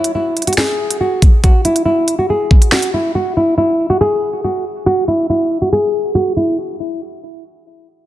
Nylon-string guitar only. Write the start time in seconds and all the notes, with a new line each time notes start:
Already playing: E4
0.15 E4
0.47 F#4
0.58 G#4
1.01 F#4
1.44 F#4
1.65 E4
1.86 E4
2.19 F#4
2.30 G#4
2.73 F#4
2.94 E4
3.15 F#4
3.37 E4
3.58 E4
3.90 F#4
4.01 G#4
4.44 F#4
4.86 F#4
5.08 E4
5.30 E4
5.62 F#4
5.73 G#4
6.15 F#4
6.37 E4